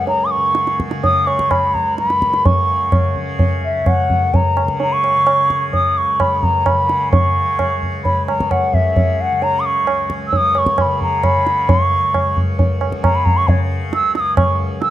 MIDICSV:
0, 0, Header, 1, 4, 480
1, 0, Start_track
1, 0, Tempo, 474308
1, 70, Time_signature, 5, 2, 24, 8
1, 3909, Tempo, 465477
1, 7749, Tempo, 457317
1, 11109, Tempo, 448096
1, 15515, End_track
2, 0, Start_track
2, 0, Title_t, "Bansuri"
2, 0, Program_c, 0, 73
2, 79, Note_on_c, 0, 82, 97
2, 255, Note_on_c, 0, 87, 71
2, 270, Note_off_c, 0, 82, 0
2, 315, Note_on_c, 0, 85, 88
2, 330, Note_off_c, 0, 87, 0
2, 797, Note_off_c, 0, 85, 0
2, 1052, Note_on_c, 0, 87, 95
2, 1286, Note_on_c, 0, 85, 83
2, 1301, Note_off_c, 0, 87, 0
2, 1524, Note_on_c, 0, 83, 89
2, 1539, Note_off_c, 0, 85, 0
2, 1763, Note_on_c, 0, 82, 84
2, 1778, Note_off_c, 0, 83, 0
2, 2001, Note_off_c, 0, 82, 0
2, 2014, Note_on_c, 0, 83, 89
2, 2486, Note_on_c, 0, 85, 87
2, 2501, Note_off_c, 0, 83, 0
2, 3199, Note_off_c, 0, 85, 0
2, 3688, Note_on_c, 0, 76, 74
2, 3924, Note_on_c, 0, 78, 78
2, 3940, Note_off_c, 0, 76, 0
2, 4408, Note_on_c, 0, 82, 90
2, 4423, Note_off_c, 0, 78, 0
2, 4884, Note_off_c, 0, 82, 0
2, 4903, Note_on_c, 0, 82, 92
2, 5015, Note_on_c, 0, 85, 105
2, 5030, Note_off_c, 0, 82, 0
2, 5728, Note_off_c, 0, 85, 0
2, 5841, Note_on_c, 0, 87, 92
2, 6090, Note_on_c, 0, 85, 84
2, 6106, Note_off_c, 0, 87, 0
2, 6327, Note_on_c, 0, 83, 91
2, 6343, Note_off_c, 0, 85, 0
2, 6559, Note_on_c, 0, 82, 82
2, 6575, Note_off_c, 0, 83, 0
2, 6810, Note_on_c, 0, 83, 91
2, 6825, Note_off_c, 0, 82, 0
2, 7267, Note_off_c, 0, 83, 0
2, 7273, Note_on_c, 0, 85, 84
2, 7949, Note_off_c, 0, 85, 0
2, 8231, Note_on_c, 0, 83, 81
2, 8456, Note_off_c, 0, 83, 0
2, 8475, Note_on_c, 0, 82, 75
2, 8719, Note_on_c, 0, 78, 80
2, 8735, Note_off_c, 0, 82, 0
2, 8961, Note_on_c, 0, 76, 78
2, 8976, Note_off_c, 0, 78, 0
2, 9453, Note_on_c, 0, 78, 85
2, 9468, Note_off_c, 0, 76, 0
2, 9682, Note_on_c, 0, 82, 100
2, 9698, Note_off_c, 0, 78, 0
2, 9863, Note_on_c, 0, 87, 66
2, 9878, Note_off_c, 0, 82, 0
2, 9922, Note_on_c, 0, 85, 82
2, 9938, Note_off_c, 0, 87, 0
2, 10397, Note_off_c, 0, 85, 0
2, 10572, Note_on_c, 0, 88, 71
2, 10664, Note_on_c, 0, 87, 98
2, 10680, Note_off_c, 0, 88, 0
2, 10894, Note_on_c, 0, 85, 86
2, 10910, Note_off_c, 0, 87, 0
2, 11137, Note_on_c, 0, 83, 81
2, 11153, Note_off_c, 0, 85, 0
2, 11360, Note_off_c, 0, 83, 0
2, 11367, Note_on_c, 0, 82, 81
2, 11594, Note_on_c, 0, 83, 93
2, 11610, Note_off_c, 0, 82, 0
2, 12086, Note_on_c, 0, 85, 86
2, 12102, Note_off_c, 0, 83, 0
2, 12805, Note_off_c, 0, 85, 0
2, 13519, Note_on_c, 0, 82, 82
2, 13643, Note_on_c, 0, 83, 83
2, 13659, Note_off_c, 0, 82, 0
2, 13746, Note_on_c, 0, 82, 90
2, 13762, Note_off_c, 0, 83, 0
2, 13875, Note_on_c, 0, 85, 100
2, 13891, Note_off_c, 0, 82, 0
2, 13998, Note_on_c, 0, 73, 79
2, 14014, Note_off_c, 0, 85, 0
2, 14119, Note_off_c, 0, 73, 0
2, 14493, Note_on_c, 0, 88, 99
2, 14708, Note_off_c, 0, 88, 0
2, 14720, Note_on_c, 0, 88, 79
2, 14766, Note_on_c, 0, 87, 86
2, 14777, Note_off_c, 0, 88, 0
2, 14940, Note_off_c, 0, 87, 0
2, 14952, Note_on_c, 0, 85, 67
2, 15175, Note_off_c, 0, 85, 0
2, 15426, Note_on_c, 0, 88, 97
2, 15515, Note_off_c, 0, 88, 0
2, 15515, End_track
3, 0, Start_track
3, 0, Title_t, "Tanpura"
3, 0, Program_c, 1, 104
3, 0, Note_on_c, 1, 37, 61
3, 0, Note_on_c, 1, 42, 61
3, 0, Note_on_c, 1, 49, 57
3, 380, Note_off_c, 1, 49, 0
3, 380, Note_on_c, 1, 49, 56
3, 931, Note_off_c, 1, 49, 0
3, 931, Note_on_c, 1, 49, 57
3, 1468, Note_off_c, 1, 37, 0
3, 1472, Note_on_c, 1, 37, 61
3, 2019, Note_off_c, 1, 42, 0
3, 2023, Note_on_c, 1, 42, 59
3, 2542, Note_off_c, 1, 49, 0
3, 2542, Note_on_c, 1, 49, 54
3, 3078, Note_off_c, 1, 49, 0
3, 3078, Note_on_c, 1, 49, 55
3, 3634, Note_off_c, 1, 37, 0
3, 3638, Note_on_c, 1, 37, 57
3, 4155, Note_off_c, 1, 42, 0
3, 4159, Note_on_c, 1, 42, 56
3, 4714, Note_off_c, 1, 49, 0
3, 4714, Note_on_c, 1, 49, 61
3, 5253, Note_off_c, 1, 49, 0
3, 5253, Note_on_c, 1, 49, 62
3, 5791, Note_off_c, 1, 37, 0
3, 5796, Note_on_c, 1, 37, 56
3, 6322, Note_off_c, 1, 42, 0
3, 6326, Note_on_c, 1, 42, 54
3, 6861, Note_off_c, 1, 49, 0
3, 6861, Note_on_c, 1, 49, 62
3, 7412, Note_off_c, 1, 49, 0
3, 7412, Note_on_c, 1, 49, 54
3, 7931, Note_off_c, 1, 37, 0
3, 7935, Note_on_c, 1, 37, 55
3, 8484, Note_off_c, 1, 42, 0
3, 8488, Note_on_c, 1, 42, 59
3, 9016, Note_off_c, 1, 49, 0
3, 9016, Note_on_c, 1, 49, 57
3, 9569, Note_off_c, 1, 49, 0
3, 9569, Note_on_c, 1, 49, 58
3, 10101, Note_off_c, 1, 37, 0
3, 10105, Note_on_c, 1, 37, 59
3, 10651, Note_off_c, 1, 42, 0
3, 10655, Note_on_c, 1, 42, 66
3, 11183, Note_off_c, 1, 49, 0
3, 11183, Note_on_c, 1, 49, 60
3, 11732, Note_off_c, 1, 49, 0
3, 11732, Note_on_c, 1, 49, 65
3, 12265, Note_off_c, 1, 37, 0
3, 12270, Note_on_c, 1, 37, 60
3, 12811, Note_off_c, 1, 42, 0
3, 12816, Note_on_c, 1, 42, 60
3, 13358, Note_off_c, 1, 49, 0
3, 13358, Note_on_c, 1, 49, 58
3, 13897, Note_off_c, 1, 49, 0
3, 13897, Note_on_c, 1, 49, 60
3, 14424, Note_off_c, 1, 37, 0
3, 14428, Note_on_c, 1, 37, 63
3, 14974, Note_off_c, 1, 42, 0
3, 14978, Note_on_c, 1, 42, 60
3, 15515, Note_off_c, 1, 37, 0
3, 15515, Note_off_c, 1, 42, 0
3, 15515, Note_off_c, 1, 49, 0
3, 15515, End_track
4, 0, Start_track
4, 0, Title_t, "Tabla"
4, 73, Note_on_c, 9, 63, 78
4, 175, Note_off_c, 9, 63, 0
4, 555, Note_on_c, 9, 62, 74
4, 656, Note_off_c, 9, 62, 0
4, 681, Note_on_c, 9, 62, 57
4, 782, Note_off_c, 9, 62, 0
4, 807, Note_on_c, 9, 37, 59
4, 908, Note_off_c, 9, 37, 0
4, 922, Note_on_c, 9, 62, 65
4, 1023, Note_off_c, 9, 62, 0
4, 1048, Note_on_c, 9, 63, 81
4, 1048, Note_on_c, 9, 64, 72
4, 1150, Note_off_c, 9, 63, 0
4, 1150, Note_off_c, 9, 64, 0
4, 1287, Note_on_c, 9, 60, 62
4, 1388, Note_off_c, 9, 60, 0
4, 1408, Note_on_c, 9, 37, 62
4, 1509, Note_off_c, 9, 37, 0
4, 1526, Note_on_c, 9, 60, 76
4, 1526, Note_on_c, 9, 64, 67
4, 1627, Note_off_c, 9, 60, 0
4, 1627, Note_off_c, 9, 64, 0
4, 1768, Note_on_c, 9, 64, 54
4, 1869, Note_off_c, 9, 64, 0
4, 2005, Note_on_c, 9, 62, 78
4, 2107, Note_off_c, 9, 62, 0
4, 2126, Note_on_c, 9, 62, 57
4, 2228, Note_off_c, 9, 62, 0
4, 2247, Note_on_c, 9, 37, 55
4, 2348, Note_off_c, 9, 37, 0
4, 2363, Note_on_c, 9, 62, 57
4, 2465, Note_off_c, 9, 62, 0
4, 2484, Note_on_c, 9, 63, 94
4, 2484, Note_on_c, 9, 64, 87
4, 2586, Note_off_c, 9, 63, 0
4, 2586, Note_off_c, 9, 64, 0
4, 2957, Note_on_c, 9, 60, 73
4, 2957, Note_on_c, 9, 64, 70
4, 3058, Note_off_c, 9, 60, 0
4, 3058, Note_off_c, 9, 64, 0
4, 3197, Note_on_c, 9, 64, 51
4, 3299, Note_off_c, 9, 64, 0
4, 3433, Note_on_c, 9, 63, 76
4, 3433, Note_on_c, 9, 64, 70
4, 3535, Note_off_c, 9, 63, 0
4, 3535, Note_off_c, 9, 64, 0
4, 3909, Note_on_c, 9, 60, 73
4, 3909, Note_on_c, 9, 64, 68
4, 4013, Note_off_c, 9, 60, 0
4, 4013, Note_off_c, 9, 64, 0
4, 4155, Note_on_c, 9, 64, 57
4, 4258, Note_off_c, 9, 64, 0
4, 4399, Note_on_c, 9, 63, 82
4, 4399, Note_on_c, 9, 64, 73
4, 4503, Note_off_c, 9, 63, 0
4, 4503, Note_off_c, 9, 64, 0
4, 4637, Note_on_c, 9, 60, 60
4, 4740, Note_off_c, 9, 60, 0
4, 4756, Note_on_c, 9, 37, 55
4, 4859, Note_off_c, 9, 37, 0
4, 4875, Note_on_c, 9, 63, 79
4, 4978, Note_off_c, 9, 63, 0
4, 5122, Note_on_c, 9, 60, 55
4, 5225, Note_off_c, 9, 60, 0
4, 5357, Note_on_c, 9, 60, 71
4, 5460, Note_off_c, 9, 60, 0
4, 5599, Note_on_c, 9, 37, 54
4, 5702, Note_off_c, 9, 37, 0
4, 5838, Note_on_c, 9, 63, 74
4, 5838, Note_on_c, 9, 64, 70
4, 5941, Note_off_c, 9, 63, 0
4, 5941, Note_off_c, 9, 64, 0
4, 6318, Note_on_c, 9, 60, 77
4, 6318, Note_on_c, 9, 64, 67
4, 6421, Note_off_c, 9, 60, 0
4, 6421, Note_off_c, 9, 64, 0
4, 6555, Note_on_c, 9, 64, 56
4, 6658, Note_off_c, 9, 64, 0
4, 6794, Note_on_c, 9, 60, 81
4, 6794, Note_on_c, 9, 64, 71
4, 6897, Note_off_c, 9, 60, 0
4, 6897, Note_off_c, 9, 64, 0
4, 7035, Note_on_c, 9, 62, 59
4, 7139, Note_off_c, 9, 62, 0
4, 7276, Note_on_c, 9, 63, 102
4, 7276, Note_on_c, 9, 64, 89
4, 7379, Note_off_c, 9, 63, 0
4, 7379, Note_off_c, 9, 64, 0
4, 7753, Note_on_c, 9, 60, 73
4, 7753, Note_on_c, 9, 64, 65
4, 7858, Note_off_c, 9, 60, 0
4, 7858, Note_off_c, 9, 64, 0
4, 8003, Note_on_c, 9, 64, 49
4, 8108, Note_off_c, 9, 64, 0
4, 8237, Note_on_c, 9, 63, 76
4, 8237, Note_on_c, 9, 64, 69
4, 8342, Note_off_c, 9, 63, 0
4, 8342, Note_off_c, 9, 64, 0
4, 8481, Note_on_c, 9, 60, 61
4, 8586, Note_off_c, 9, 60, 0
4, 8607, Note_on_c, 9, 37, 59
4, 8712, Note_off_c, 9, 37, 0
4, 8719, Note_on_c, 9, 60, 72
4, 8719, Note_on_c, 9, 64, 62
4, 8824, Note_off_c, 9, 60, 0
4, 8824, Note_off_c, 9, 64, 0
4, 8956, Note_on_c, 9, 64, 57
4, 9061, Note_off_c, 9, 64, 0
4, 9195, Note_on_c, 9, 63, 83
4, 9195, Note_on_c, 9, 64, 72
4, 9300, Note_off_c, 9, 63, 0
4, 9300, Note_off_c, 9, 64, 0
4, 9674, Note_on_c, 9, 63, 75
4, 9779, Note_off_c, 9, 63, 0
4, 10149, Note_on_c, 9, 60, 73
4, 10254, Note_off_c, 9, 60, 0
4, 10385, Note_on_c, 9, 37, 57
4, 10490, Note_off_c, 9, 37, 0
4, 10624, Note_on_c, 9, 63, 73
4, 10624, Note_on_c, 9, 64, 69
4, 10729, Note_off_c, 9, 63, 0
4, 10729, Note_off_c, 9, 64, 0
4, 10859, Note_on_c, 9, 60, 66
4, 10964, Note_off_c, 9, 60, 0
4, 10979, Note_on_c, 9, 37, 61
4, 11084, Note_off_c, 9, 37, 0
4, 11100, Note_on_c, 9, 60, 73
4, 11100, Note_on_c, 9, 64, 67
4, 11207, Note_off_c, 9, 60, 0
4, 11207, Note_off_c, 9, 64, 0
4, 11347, Note_on_c, 9, 64, 55
4, 11454, Note_off_c, 9, 64, 0
4, 11588, Note_on_c, 9, 60, 83
4, 11588, Note_on_c, 9, 64, 74
4, 11696, Note_off_c, 9, 60, 0
4, 11696, Note_off_c, 9, 64, 0
4, 11835, Note_on_c, 9, 62, 58
4, 11942, Note_off_c, 9, 62, 0
4, 12076, Note_on_c, 9, 63, 107
4, 12076, Note_on_c, 9, 64, 92
4, 12183, Note_off_c, 9, 63, 0
4, 12183, Note_off_c, 9, 64, 0
4, 12562, Note_on_c, 9, 60, 72
4, 12562, Note_on_c, 9, 64, 62
4, 12669, Note_off_c, 9, 60, 0
4, 12669, Note_off_c, 9, 64, 0
4, 12802, Note_on_c, 9, 64, 49
4, 12909, Note_off_c, 9, 64, 0
4, 13041, Note_on_c, 9, 63, 77
4, 13041, Note_on_c, 9, 64, 70
4, 13148, Note_off_c, 9, 63, 0
4, 13148, Note_off_c, 9, 64, 0
4, 13276, Note_on_c, 9, 60, 61
4, 13383, Note_off_c, 9, 60, 0
4, 13397, Note_on_c, 9, 37, 61
4, 13504, Note_off_c, 9, 37, 0
4, 13521, Note_on_c, 9, 60, 78
4, 13521, Note_on_c, 9, 64, 68
4, 13628, Note_off_c, 9, 60, 0
4, 13628, Note_off_c, 9, 64, 0
4, 13758, Note_on_c, 9, 64, 57
4, 13865, Note_off_c, 9, 64, 0
4, 13997, Note_on_c, 9, 63, 80
4, 13997, Note_on_c, 9, 64, 77
4, 14104, Note_off_c, 9, 63, 0
4, 14104, Note_off_c, 9, 64, 0
4, 14474, Note_on_c, 9, 62, 76
4, 14581, Note_off_c, 9, 62, 0
4, 14711, Note_on_c, 9, 62, 73
4, 14818, Note_off_c, 9, 62, 0
4, 14949, Note_on_c, 9, 60, 89
4, 14949, Note_on_c, 9, 64, 79
4, 15056, Note_off_c, 9, 60, 0
4, 15056, Note_off_c, 9, 64, 0
4, 15425, Note_on_c, 9, 62, 76
4, 15515, Note_off_c, 9, 62, 0
4, 15515, End_track
0, 0, End_of_file